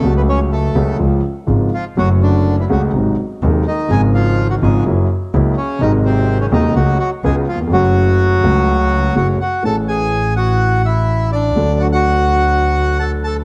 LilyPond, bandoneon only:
\new Staff \with { instrumentName = "Bandoneon" } { \time 4/4 \key fis \minor \tempo 4 = 125 <a a'>16 <b b'>16 <cis' cis''>8 <a a'>4 r4. <eis eis'>8 | <fis fis'>8 <d d'>8. <e e'>16 <fis fis'>8 r4. <dis dis'>8 | <gis gis'>8 <eis eis'>8. <fis fis'>16 <gis gis'>8 r4. <cis cis'>8 | <dis dis'>8 <bis, bis>8. <cis cis'>16 <dis dis'>8 <fis fis'>8 <fis fis'>8 <gis gis'>8 <eis eis'>8 |
<fis fis'>2. <fis' fis''>8 <fis' fis''>8 | \key a \major <a' a''>8 <gis' gis''>4 <fis' fis''>4 <e' e''>4 <d' d''>8~ | <d' d''>8 <fis' fis''>16 <fis' fis''>2~ <fis' fis''>16 <a' a''>8 <a' a''>8 | }